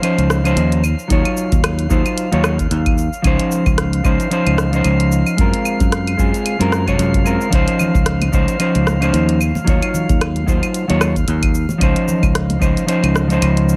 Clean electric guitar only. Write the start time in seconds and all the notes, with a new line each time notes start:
0.02 F3 C#4 D#4 C5
0.44 F3 C#4 D#4 C5
1.08 F#3 D#4 F4
1.12 C#5
1.90 F#3 D#4 F4 C5
2.32 F#3 D#4 F4 C#5
3.22 F3 C#4 D#4
3.27 C5
4.04 F3 C#4 D#4 C5
4.30 F3 C#4 D#4 C5
4.71 F3 C#4 D#4
4.76 C5
5.37 G#3 C4 F4
5.41 A#4
6.17 G#3 C4 F4 G#4
6.59 G#3 C4 F4 A#4
6.86 C3 G#3 F4 C#5
7.24 G#3 C4 F4 A#4
7.50 F3 C#4 D#4
7.55 C5
8.32 F3 C#4 D#4 C5
8.59 F3 C#4 D#4 C5
9.00 F3 C#4 D#4 C5
9.65 F#3 D#4 F4
9.69 C#5
10.46 F#3 D#4 F4 C5
10.88 F#3 D#4 F4 C#5
11.78 F3 C#4 D#4
11.83 C5
12.60 F3 C#4 D#4 C5
12.86 F3 C#4 D#4 C5
13.28 F3 C#4 D#4
13.32 C5